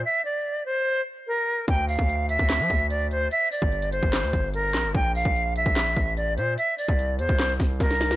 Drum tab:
HH |----------------|x-o-x-x-x-x-x-x-|x-o-xxx-x-x-x-x-|x-o-x-x-x-x-x-x-|
CP |----------------|--------x-------|--------x-----x-|--------x-------|
SD |----------------|--------o-------|--------o-----o-|--------o-------|
BD |----------------|o--o---o--o-----|---o---o--o-----|o--o---o--o-----|

HH |x-o-x-x-x-x-x-x-|
CP |--------x-------|
SD |--------o-o-oooo|
BD |---o---o--o-o---|